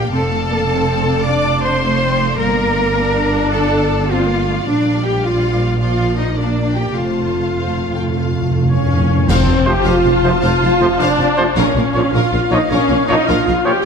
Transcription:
Already playing: double bass section A#1, viola section A#3, violin section D5 F5 G5
0.12 double bass section F1, viola section C4, cello section A4, violin section D5 A5
0.31 viola section A3
0.51 viola section A#3
0.69 viola section C4
1.25 viola section D4, cello section D5, violin section D6
1.63 cello section C5, violin section C6
1.81 viola section A3
2.03 viola section C4
2.21 viola section A3
2.38 double bass section G1, viola section A#3, cello section A#4, violin section F5 A#5
2.96 viola section D4
3.52 cello section A4, violin section A5
4.09 viola section C4, cello section F4, violin section F5
4.27 viola section A#3
4.47 viola section A3
4.66 double bass section A#1, viola section G3, cello section D4, violin section D5 F5
5.04 cello section G4, violin section G5
5.22 cello section F4, violin section D5 F5
5.79 viola section F3, cello section F4, violin section D5 F5
6.17 cello section D#4, violin section D#5
6.37 viola section A#3, cello section D4, violin section D5 F5
6.68 violin section G5
6.75 cello section G4, violin section G5
6.95 double bass section F1, timpani F2, viola section A3, cello section F4, violin section C5 F5 A5
7.03 timpani F2
7.11 timpani F2
7.20 timpani F2
7.27 timpani F2
7.35 timpani F2
7.41 timpani F2
7.49 timpani F2
7.55 timpani F2, violin section C5
7.64 timpani F2
7.72 timpani F2
7.80 timpani F2
7.87 timpani F2
7.94 timpani F2, violin section G5
8.02 timpani F2
8.09 timpani F2, violin section F5
8.17 timpani F2
8.25 timpani F2
8.32 timpani F2
8.39 timpani F2
8.48 timpani F2
8.55 timpani F2
8.63 timpani F2
8.69 timpani F2, viola section C#4, oboe C#5, flute section C#5, violin section F5
8.78 timpani F2
8.86 timpani F2
8.94 timpani F2
9.00 timpani F2
9.08 timpani F2
9.16 timpani F2
9.27 tuba F1, double bass section F1, timpani F2, cello section F2, viola section C4, oboe C5, flute section C5, violin section C5 F5 A5, concert bass drum, crash
9.47 tuba F1, double bass section F1, cello section F2, violin section C5 F5
9.65 double bass section F1, tuba F1, cello section F2, trombone section C3 F3, french horn section A3 F4, viola section G4, trumpet C5, violin section C5, oboe G5, flute section G5
9.83 tuba F1, double bass section F1, cello section F2, viola section F4, violin section C5 F5, oboe F5, flute section F5
10.03 tuba F1, double bass section F1, cello section F2, violin section C5 F5
10.23 tuba F1, double bass section F1, cello section F2, trombone section C3 F3, french horn section A3 F4, violin section C5, trumpet C5
10.41 tuba F1, double bass section F1, cello section F2, viola section F4, violin section C5 F5, oboe F5, flute section F5
10.62 tuba F1, double bass section F1, cello section F2, violin section C5 F5
10.79 tuba F1, double bass section F1, cello section F2, trombone section C3 F3, french horn section A3 F4, trumpet C5, violin section C5
10.99 tuba F1, double bass section F1, cello section F2, viola section D4, violin section C5 F5, flute section D5, oboe D5
11.17 tuba F1, double bass section F1, cello section F2, violin section C5 F5
11.37 trombone section C3 F3, french horn section A3 F4, trumpet C5
11.55 double bass section A#1, tuba A#1, cello section A#2, viola section C#4, violin section A#4 F5, oboe C#5, flute section C#5
11.75 double bass section A#1, tuba A#1, cello section A#2, violin section A#4 F5
11.94 double bass section A#1, tuba A#1, cello section A#2, trombone section A#2 F3, french horn section A#3 F4, violin section A#4 C#5, trumpet C#5
12.13 tuba A#1, double bass section A#1, cello section A#2, viola section F4, violin section A#4 F5, oboe F5, flute section F5
12.32 tuba A#1, double bass section A#1, cello section A#2, violin section A#4 F5
12.51 tuba A#1, double bass section A#1, cello section A#2, trombone section A#2 F3, french horn section A#3 F4, viola section D#4, violin section A#4 C#5, trumpet C#5, flute section D#5, oboe D#5
12.70 double bass section A#1, tuba A#1, cello section A#2, viola section C#4, violin section A#4 F5, oboe C#5, flute section C#5
12.88 tuba A#1, double bass section A#1, cello section A#2, violin section A#4 F5
13.07 double bass section A#1, tuba A#1, cello section A#2, trombone section A#2 F3, french horn section A#3 F4, viola section D#4, violin section A#4 C#5, trumpet C#5, oboe D#5, flute section D#5
13.27 tuba A#1, double bass section A#1, cello section A#2, viola section F4, violin section A#4 F5, oboe F5, flute section F5
13.46 tuba A#1, double bass section A#1, cello section A#2, violin section A#4 F5
13.65 trombone section A#2 F3, french horn section A#3 F4, viola section G4, trumpet C#5, oboe G5, flute section G5

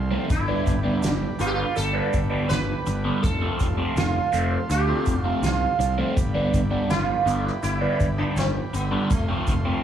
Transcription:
Already playing: fingered electric bass C2, transistor combo organ A4 C5 F5 C6
0.11 overdriven electric guitar C3 F3 A3 C4
0.30 fingered electric bass G1, sitar E4, transistor combo organ G4 B4 D5 B5, kick, closed hi-hat, shaker
0.48 overdriven electric guitar D3 G3 B3 D4
0.66 fingered electric bass G1, kick, closed hi-hat, shaker
0.84 overdriven electric guitar D3 G3 B3 D4
1.03 fingered electric bass G1, sitar D4, snare, closed hi-hat, shaker
1.39 fingered electric bass G1, overdriven electric guitar D3 G3 B3 D4, sitar F4, closed hi-hat, shaker
1.47 sitar G4
1.54 sitar F4
1.76 fingered electric bass G1, sitar A4, muted overdriven electric guitar stroke, closed hi-hat, shaker
1.94 overdriven electric guitar D3 G3 B3 D4
2.13 fingered electric bass G1, kick, closed hi-hat, shaker
2.31 overdriven electric guitar D3 G3 B3 D4
2.49 fingered electric bass G1, sitar B4, snare, closed hi-hat, shaker
2.86 fingered electric bass G1, muted overdriven electric guitar stroke, closed hi-hat, shaker
3.05 overdriven electric guitar D3 G3 B3 D4
3.22 fingered electric bass F1, sitar A4, transistor combo organ A4 C5 F5 C6, kick, closed hi-hat, shaker
3.41 overdriven electric guitar C3 F3 A3 C4
3.59 fingered electric bass F1, kick, closed hi-hat, shaker
3.78 overdriven electric guitar C3 F3 A3 C4
3.96 fingered electric bass F1, sitar F4, snare, closed hi-hat, shaker
4.33 fingered electric bass F1, overdriven electric guitar C3 F3 A3 C4, closed hi-hat, shaker
4.70 fingered electric bass D2, sitar G4, muted overdriven electric guitar stroke, closed hi-hat, shaker
4.88 overdriven electric guitar C3 F3 A3 C4
5.06 fingered electric bass F1, kick, closed hi-hat, shaker
5.22 overdriven electric guitar C3 F3 A3 C4, sitar F4
5.42 fingered electric bass C2, sitar F4, snare, closed hi-hat, shaker
5.79 fingered electric bass C2, muted overdriven electric guitar stroke, closed hi-hat, shaker
5.98 overdriven electric guitar C3 F3 A3 C4
6.17 fingered electric bass G1, transistor combo organ G4 B4 D5 B5, kick, closed hi-hat, shaker
6.35 overdriven electric guitar D3 G3 B3 D4
6.54 fingered electric bass G1, kick, closed hi-hat, shaker
6.71 overdriven electric guitar D3 G3 B3 D4
6.89 fingered electric bass G1, sitar F4, snare, closed hi-hat, shaker
7.26 fingered electric bass G1, overdriven electric guitar D3 G3 B3 D4, closed hi-hat, shaker
7.42 sitar E4
7.47 snare
7.62 fingered electric bass G1, sitar E4, muted overdriven electric guitar stroke, closed hi-hat, shaker
7.81 overdriven electric guitar D3 G3 B3 D4
8.00 fingered electric bass G1, kick, closed hi-hat, shaker
8.18 overdriven electric guitar D3 G3 B3 D4, sitar D4
8.36 fingered electric bass G1, sitar C4, snare, closed hi-hat, shaker
8.73 fingered electric bass G1, sitar B3, muted overdriven electric guitar stroke, closed hi-hat, shaker
8.91 overdriven electric guitar D3 G3 B3 D4
9.10 fingered electric bass F1, sitar A3, transistor combo organ A4 C5 F5 C6, kick, closed hi-hat, shaker
9.29 overdriven electric guitar C3 F3 A3 C4
9.47 fingered electric bass F1, kick, closed hi-hat, shaker
9.65 overdriven electric guitar C3 F3 A3 C4

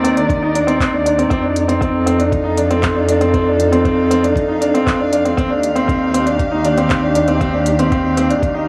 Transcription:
Already playing: double bass section D#2, string quartet D#3 D#4 A#4 D5
0.04 upright piano C4, closed hi-hat
0.17 upright piano D4, closed hi-hat
0.30 kick, closed hi-hat
0.42 upright piano D#4
0.55 upright piano D4, closed hi-hat
0.67 upright piano C4, closed hi-hat
0.80 upright piano C4, kick, clap, closed hi-hat
0.93 upright piano D4
1.06 upright piano D4, closed hi-hat
1.18 upright piano C4, closed hi-hat
1.30 double bass section F2, string quartet F3, upright piano C4, kick, closed hi-hat
1.42 upright piano D4
1.56 closed hi-hat
1.68 upright piano C4, closed hi-hat
1.81 upright piano C4, kick, closed hi-hat
1.94 string quartet A4
2.06 upright piano C4, closed hi-hat
2.19 upright piano D4, closed hi-hat
2.23 string quartet F5
2.32 kick, closed hi-hat
2.44 upright piano D#4
2.57 upright piano D4, closed hi-hat
2.71 upright piano C4, closed hi-hat
2.83 upright piano C4, kick, clap, closed hi-hat
2.96 upright piano D4
3.08 upright piano D4, closed hi-hat
3.21 upright piano C4, closed hi-hat
3.34 upright piano C4, kick, closed hi-hat
3.48 upright piano D4
3.60 closed hi-hat
3.72 upright piano C4, closed hi-hat
3.85 upright piano C4, kick, closed hi-hat
4.11 upright piano C4, closed hi-hat
4.23 upright piano D4, closed hi-hat
4.36 kick, closed hi-hat
4.48 upright piano D#4
4.61 upright piano D4, closed hi-hat
4.74 upright piano C4, closed hi-hat
4.86 upright piano C4, kick, clap, closed hi-hat
5.00 upright piano D4
5.13 upright piano D4, closed hi-hat
5.25 upright piano C4, closed hi-hat
5.37 double bass section D#2, string quartet D#3, upright piano C4, kick, closed hi-hat
5.50 upright piano D4, string quartet G4
5.63 closed hi-hat
5.76 upright piano C4, closed hi-hat
5.88 upright piano C4, kick, closed hi-hat
6.14 upright piano C4, closed hi-hat
6.26 upright piano D4, closed hi-hat
6.39 kick, closed hi-hat
6.52 upright piano D#4
6.65 upright piano D4, closed hi-hat
6.78 upright piano C4, closed hi-hat
6.90 upright piano C4, kick, clap, closed hi-hat
7.03 upright piano D4
7.15 upright piano D4, closed hi-hat
7.28 upright piano C4, closed hi-hat
7.41 upright piano C4, kick, closed hi-hat
7.54 upright piano D4
7.66 closed hi-hat
7.79 upright piano C4, closed hi-hat
7.92 upright piano C4, kick, closed hi-hat
8.17 upright piano C4, closed hi-hat
8.30 upright piano D4, closed hi-hat
8.43 kick, closed hi-hat
8.54 upright piano D#4

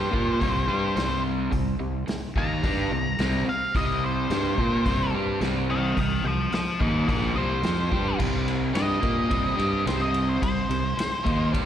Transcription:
Already playing: fingered electric bass G2, overdriven electric guitar G3 D4 G4, lead electric guitar C5
0.11 fingered electric bass A#2, overdriven electric guitar A#3 F4 A#4, kick
0.40 fingered electric bass C2, overdriven electric guitar C3 G3 C4, kick, open hi-hat
0.67 fingered electric bass G2, overdriven electric guitar G3 D4 G4
0.95 fingered electric bass C2, overdriven electric guitar C3 G3 C4, snare, open hi-hat
1.51 fingered electric bass C2, overdriven electric guitar C3 G3, kick, open hi-hat
1.80 fingered electric bass C2, overdriven electric guitar C3 G3
2.08 muted overdriven electric guitar stroke, muted fingered electric bass stroke, snare, open hi-hat
2.36 fingered electric bass D#2, overdriven electric guitar D#3 A#3 D#4, lead electric guitar A#5, kick
2.63 fingered electric bass G2, overdriven electric guitar G3 D4 G4, kick, open hi-hat
2.91 fingered electric bass C2, overdriven electric guitar C3 G3
3.19 fingered electric bass C2, overdriven electric guitar C3 G3 C4, snare, open hi-hat
3.47 lead electric guitar F5, muted overdriven electric guitar stroke, muted fingered electric bass stroke
3.75 fingered electric bass C2, overdriven electric guitar C3 G3 C4, lead electric guitar D#5, kick, open hi-hat
4.06 lead electric guitar C5
4.30 fingered electric bass G2, overdriven electric guitar G3 D4 G4, snare, open hi-hat
4.58 fingered electric bass A#2, overdriven electric guitar A#3 F4 A#4, kick
4.86 fingered electric bass C2, overdriven electric guitar C3 G3 C4, kick, open hi-hat
5.13 fingered electric bass G2, overdriven electric guitar G3 D4 G4
5.40 fingered electric bass C2, overdriven electric guitar C3 G3 C4, snare, open hi-hat
5.70 lead electric guitar D#5 G5
5.97 fingered electric bass C2, overdriven electric guitar C3 G3, lead electric guitar D#5 G5, kick, open hi-hat
6.24 fingered electric bass C2, overdriven electric guitar C3 G3, lead electric guitar C5 F5
6.52 lead electric guitar C5 F5, muted fingered electric bass stroke, muted overdriven electric guitar stroke, snare, open hi-hat
6.80 fingered electric bass D#2, overdriven electric guitar D#3 A#3 D#4, lead electric guitar C5 D#5, kick
7.08 fingered electric bass A#1, overdriven electric guitar A#2 F3 A#3, lead electric guitar C5 D#5, kick, open hi-hat
7.35 fingered electric bass C2, overdriven electric guitar C3 G3 C4, lead electric guitar C5
7.63 fingered electric bass F2, overdriven electric guitar F3 C4 F4, snare, open hi-hat
7.91 fingered electric bass G2, overdriven electric guitar G3 D4 G4, kick
8.18 fingered electric bass C2, overdriven electric guitar C3 G3 C4, kick, crash
8.48 ride
8.73 fingered electric bass G2, overdriven electric guitar G3 D4 G4, lead electric guitar D#5, snare, ride
9.01 fingered electric bass A#2, overdriven electric guitar A#3 F4 A#4, kick, ride
9.29 fingered electric bass C2, overdriven electric guitar C3 G3 C4, kick, ride
9.57 fingered electric bass G2, overdriven electric guitar G3 D4 G4, ride
9.85 fingered electric bass C2, overdriven electric guitar C3 G3 C4, lead electric guitar C5, snare, ride
10.01 lead electric guitar D#5
10.14 ride
10.29 lead electric guitar C5
10.42 fingered electric bass C2, overdriven electric guitar C3 G3, lead electric guitar C5, kick, ride
10.69 fingered electric bass C2, overdriven electric guitar C3 G3, ride
10.97 muted fingered electric bass stroke, muted overdriven electric guitar stroke, snare, ride
11.24 fingered electric bass D#2, overdriven electric guitar D#3 A#3 D#4, kick, ride
11.52 fingered electric bass G2, overdriven electric guitar G3 D4 G4, kick, ride

